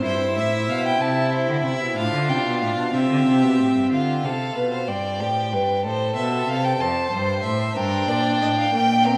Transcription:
0.03 cello G2, viola E4, violin C5 E5
0.36 cello A2, violin E5
0.68 cello B2, violin F5
0.86 violin G5
1.00 cello C3, violin E4 A5
1.33 violin C5
1.49 cello D3
1.64 cello C3, violin E5
1.80 cello B2
1.96 cello A2, viola D4, violin F4 F5
2.13 cello D3
2.29 cello C3, violin G5
2.45 cello B2
2.62 cello A2, violin F5
2.77 cello B2
2.93 cello C3, viola C4, violin G4 E5
3.10 cello D3
3.27 cello C3
3.42 cello B2
3.59 cello A2
3.76 cello G2
3.92 cello D3, violin F4 F5
4.23 cello C3, violin A4
4.55 cello B2, violin B4
4.71 violin C5
4.88 cello G2, violin D5 G5
5.20 cello A2, violin G4
5.52 cello G2, violin B4
5.85 cello A2, violin A4 C5
6.16 cello B2, violin E5
6.49 cello C3, violin F5
6.65 violin G5
6.81 cello F2, violin C5 A5
7.12 cello G2, violin C5
7.44 cello A2, violin E5
7.76 cello G2, viola D4, violin A#4 G5
8.08 cello A#2, violin D5
8.41 cello A2, violin D#5
8.58 violin F5
8.74 cello A#2, viola A#3, violin G5
9.06 viola C4, violin A#4

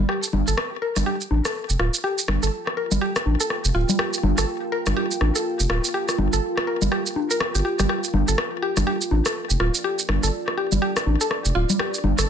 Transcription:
0.09 ambient pad F4, synth arpeggio sound G4, cross-stick
0.23 shaker
0.33 sub bass G1, high conga, low conga
0.48 sub bass G1, synth arpeggio sound A4, shaker
0.54 ambient pad G5, cross-stick
0.79 ambient pad A#4, synth arpeggio sound A#4
0.97 sub bass G1, cross-stick, high conga, low conga, shaker
1.06 synth arpeggio sound G4
1.21 shaker
1.31 sub bass A1, high conga
1.45 synth arpeggio sound A4, cross-stick, shaker
1.70 sub bass F1, shaker
1.79 sub bass D1, synth arpeggio sound F4, cross-stick
1.94 shaker
2.04 synth arpeggio sound G4
2.19 shaker
2.28 sub bass G1, cross-stick, high conga, low conga
2.43 sub bass G1, synth arpeggio sound A4, shaker
2.67 cross-stick
2.77 synth arpeggio sound A#4
2.92 sub bass G1, low conga, shaker
3.01 synth arpeggio sound G4
3.16 cross-stick, shaker
3.26 sub bass A1, high conga
3.40 synth arpeggio sound A4, shaker
3.50 cross-stick
3.65 sub bass F1, shaker
3.75 sub bass D1, synth arpeggio sound F4
3.89 low conga, shaker
3.99 synth arpeggio sound G4, cross-stick
4.14 shaker
4.23 sub bass G1, high conga, low conga
4.38 sub bass G1, synth arpeggio sound A4, cross-stick, shaker
4.72 synth arpeggio sound A#4
4.87 sub bass G1, cross-stick, high conga, low conga, shaker
4.97 synth arpeggio sound G4
5.11 shaker
5.21 sub bass A1, cross-stick, high conga
5.36 synth arpeggio sound A4, shaker
5.60 sub bass F1, shaker
5.70 sub bass D1, synth arpeggio sound F4, cross-stick
5.84 shaker
5.94 synth arpeggio sound G4
6.09 cross-stick, shaker
6.18 sub bass G1, high conga, low conga
6.33 sub bass G1, synth arpeggio sound A4, shaker
6.58 cross-stick
6.67 synth arpeggio sound A#4
6.82 sub bass G1, low conga, shaker
6.92 synth arpeggio sound G4, cross-stick
7.06 shaker
7.16 high conga
7.31 synth arpeggio sound A#4, shaker
7.41 cross-stick
7.55 sub bass G1, synth arpeggio sound G4, shaker
7.65 synth arpeggio sound G4
7.79 sub bass G1, synth arpeggio sound G4, cross-stick, low conga, shaker
7.89 synth arpeggio sound G4, cross-stick
8.04 shaker
8.14 sub bass G1, high conga, low conga
8.28 sub bass G1, synth arpeggio sound A4, shaker
8.34 ambient pad D5, cross-stick
8.62 synth arpeggio sound G4
8.77 sub bass G1, cross-stick, high conga, low conga, shaker
8.87 synth arpeggio sound G4
9.01 shaker
9.11 sub bass A1, high conga
9.26 synth arpeggio sound A4, cross-stick, shaker
9.50 sub bass F1, shaker
9.60 sub bass D1, synth arpeggio sound F4, cross-stick
9.75 shaker
9.84 synth arpeggio sound G4
9.99 shaker
10.09 sub bass G1, cross-stick, high conga, low conga
10.23 sub bass G1, synth arpeggio sound A4, shaker
10.48 cross-stick
10.58 synth arpeggio sound G4
10.72 sub bass G1, low conga, shaker
10.82 synth arpeggio sound G4
10.97 cross-stick, shaker
11.06 sub bass A1, high conga
11.21 synth arpeggio sound A4, shaker
11.31 cross-stick
11.45 sub bass F1, shaker
11.55 sub bass D1, synth arpeggio sound F4
11.70 low conga, shaker
11.79 synth arpeggio sound G4, cross-stick
11.94 shaker
12.04 sub bass G1, high conga, low conga
12.18 sub bass G1, synth arpeggio sound A4, cross-stick, shaker

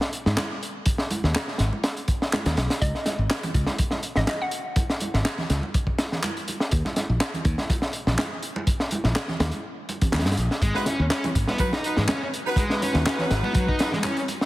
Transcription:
0.01 snare
0.13 closed hi-hat
0.26 fingered electric bass G#2, snare
0.37 snare, clap, closed hi-hat, high conga
0.63 closed hi-hat
0.86 kick, closed hi-hat
0.98 snare
1.10 closed hi-hat, high conga
1.24 fingered electric bass D#2, snare
1.35 snare, clap, closed hi-hat
1.48 snare
1.58 fingered electric bass G#1, snare, closed hi-hat
1.73 high conga
1.84 snare, closed hi-hat
1.97 closed hi-hat
2.08 kick, closed hi-hat
2.22 snare
2.33 snare, clap, closed hi-hat, high conga
2.46 fingered electric bass D#2, snare, closed hi-hat
2.57 fingered electric bass B1, snare, closed hi-hat
2.70 snare, closed hi-hat
2.81 fingered electric bass C#2, synth pluck D#5, kick, closed hi-hat
2.95 snare
3.06 snare, closed hi-hat, muted conga, high conga
3.19 fingered electric bass G#1
3.30 snare, clap, closed hi-hat
3.43 closed hi-hat, muted conga, low conga
3.54 fingered electric bass C#2, kick, closed hi-hat
3.66 snare, high conga
3.78 kick, closed hi-hat
3.91 snare, muted conga
4.03 closed hi-hat
4.16 fingered electric bass G#1, synth pluck D#5, snare, low conga
4.27 synth pluck D#5, snare, clap, closed hi-hat, muted conga, high conga
4.42 synth pluck F#5
4.51 closed hi-hat
4.76 kick, closed hi-hat, muted conga
4.90 snare
5.00 closed hi-hat, high conga
5.14 fingered electric bass G#1, snare, muted conga
5.25 snare, clap, closed hi-hat
5.38 snare, low conga
5.50 fingered electric bass C#2, snare, closed hi-hat
5.62 muted conga, high conga
5.74 kick, closed hi-hat
5.87 kick
5.98 snare, closed hi-hat, muted conga
6.12 snare, low conga
6.23 clap, closed hi-hat, high conga
6.37 closed hi-hat
6.48 closed hi-hat, muted conga
6.60 snare
6.71 fingered electric bass D#2, kick, closed hi-hat
6.85 snare, muted conga
6.96 snare, closed hi-hat, high conga
7.10 fingered electric bass A#1
7.20 snare, clap, closed hi-hat
7.34 closed hi-hat, muted conga, low conga
7.45 fingered electric bass D#2, kick, closed hi-hat
7.58 snare, high conga
7.70 kick, closed hi-hat, muted conga
7.82 snare
7.93 closed hi-hat
8.07 fingered electric bass A#1, snare, low conga
8.18 snare, clap, closed hi-hat, muted conga, high conga
8.43 closed hi-hat
8.56 muted conga
8.67 kick, closed hi-hat
8.80 snare
8.91 closed hi-hat, high conga
9.04 fingered electric bass A#1, snare, muted conga
9.16 snare, clap, closed hi-hat
9.28 snare, low conga
9.40 fingered electric bass D#2, snare, closed hi-hat, muted conga
9.52 closed hi-hat, high conga
9.89 closed hi-hat, muted conga
10.01 muted fingered electric bass stroke, kick, closed hi-hat, low conga
10.12 fingered electric bass D#2, snare, clap, closed hi-hat, high conga
10.19 snare, closed hi-hat
10.26 fingered electric bass G2, snare, closed hi-hat, muted conga
10.32 snare, closed hi-hat
10.37 fingered electric bass A#1, closed hi-hat
10.51 snare
10.62 fingered electric bass G#1, distorted electric guitar G#3, kick, closed hi-hat
10.75 horn section D#4 F#4 B4, snare
10.86 distorted electric guitar C#4, snare, closed hi-hat, muted conga, high conga
11.00 fingered electric bass D#2
11.10 distorted electric guitar C#4, snare, clap, closed hi-hat
11.24 closed hi-hat, muted conga, low conga
11.35 fingered electric bass G#1, kick, closed hi-hat
11.47 distorted electric guitar B3, snare, high conga
11.58 distorted electric guitar F#3, horn section D#4 F#4 B4, kick, closed hi-hat
11.73 distorted electric guitar D#4, snare, muted conga
11.84 horn section D#4 F#4 B4, closed hi-hat
11.97 fingered electric bass G#2, distorted electric guitar G#3, snare, low conga
12.08 distorted electric guitar C#4, snare, clap, closed hi-hat, muted conga, high conga
12.34 closed hi-hat
12.46 horn section D#4 F#4 B4
12.56 distorted electric guitar G#3, kick, closed hi-hat, muted conga
12.70 horn section D#4 F#4 B4, snare
12.82 distorted electric guitar C#4, closed hi-hat, high conga
12.94 fingered electric bass D#2, snare, muted conga
13.06 distorted electric guitar C#4, snare, clap, closed hi-hat
13.18 snare, low conga
13.31 fingered electric bass G#1, snare, closed hi-hat
13.44 distorted electric guitar B3, muted conga, high conga
13.55 distorted electric guitar F#3, kick, closed hi-hat
13.68 distorted electric guitar D#4, kick
13.79 horn section D#4 F#4 B4, snare, closed hi-hat, muted conga
13.92 distorted electric guitar G#3, snare, low conga
14.03 distorted electric guitar C#4, clap, closed hi-hat, high conga
14.17 closed hi-hat
14.28 closed hi-hat, muted conga
14.41 snare

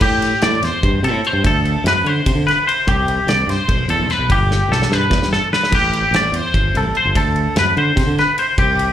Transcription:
0.01 fingered electric bass A2, clean electric guitar G4, kick, crash
0.22 snare, ride
0.42 fingered electric bass A2, clean electric guitar D5, snare, ride
0.62 fingered electric bass E2, clean electric guitar C5, snare, ride
0.83 fingered electric bass G2, kick, ride
1.03 fingered electric bass C3, clean electric guitar A4, ride
1.12 fingered electric bass A2
1.24 clean electric guitar C5, ride
1.33 fingered electric bass G2
1.44 fingered electric bass D2, clean electric guitar A4, kick, ride
1.65 ride
1.84 fingered electric bass F#2, clean electric guitar B4, snare, ride
2.04 fingered electric bass D3, clean electric guitar C5, ride
2.26 fingered electric bass C3, kick, ride
2.35 fingered electric bass D3
2.47 clean electric guitar B4, snare, ride
2.67 clean electric guitar C5, ride
2.87 fingered electric bass C2, clean electric guitar G4, kick, ride
3.08 ride
3.27 fingered electric bass C2, clean electric guitar D5, snare, ride
3.47 fingered electric bass G2, clean electric guitar C5, snare, ride
3.68 fingered electric bass B1, kick, ride
3.88 fingered electric bass E2, clean electric guitar A4, ride
4.00 fingered electric bass C2
4.10 clean electric guitar B4, snare, ride
4.19 fingered electric bass B1
4.29 fingered electric bass G1, clean electric guitar G4, kick, ride
4.51 snare
4.69 fingered electric bass B1, clean electric guitar A4, snare
4.82 snare
4.90 fingered electric bass G2, clean electric guitar B4, snare
5.10 fingered electric bass E2, kick, snare
5.19 fingered electric bass G2, snare
5.33 clean electric guitar A4, snare
5.53 clean electric guitar B4, snare
5.63 snare
5.72 fingered electric bass A1, clean electric guitar G4, kick, crash, ride
5.93 ride
6.11 fingered electric bass A1, snare, ride
6.16 clean electric guitar D5
6.32 fingered electric bass E2, clean electric guitar C5, ride
6.54 fingered electric bass G1, kick, ride
6.74 fingered electric bass C2, clean electric guitar A4, ride
6.85 fingered electric bass A1
6.95 clean electric guitar C5, ride
7.05 fingered electric bass G1
7.15 fingered electric bass D2, clean electric guitar A4, kick, ride
7.36 ride
7.56 fingered electric bass F#2, clean electric guitar B4, snare, ride
7.77 fingered electric bass D3, clean electric guitar C5, ride
7.96 fingered electric bass C3, kick, snare, ride
8.07 fingered electric bass D3
8.18 clean electric guitar B4, snare, ride
8.38 clean electric guitar C5, ride
8.58 fingered electric bass C2, clean electric guitar G4, kick, ride
8.79 ride

